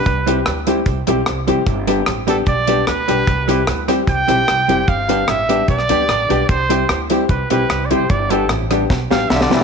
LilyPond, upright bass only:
\new Staff \with { instrumentName = "Upright bass" } { \clef bass \time 4/4 \key c \major \tempo 4 = 149 c,4 d,4 c,8 b,,8 c,8 f,,8 | g,,4 a,,4 b,,4 d,8 b,,8 | c,4 d,4 c,8 b,,8 c,8 f,,8 | g,,4 a,,4 b,,8 d,8 a,,8 b,,8 |
c,4 d,4 c,8 b,,8 c,8 f,,8 | g,,4 a,,4 b,,8 a,,8 b,,8 b,,8 | }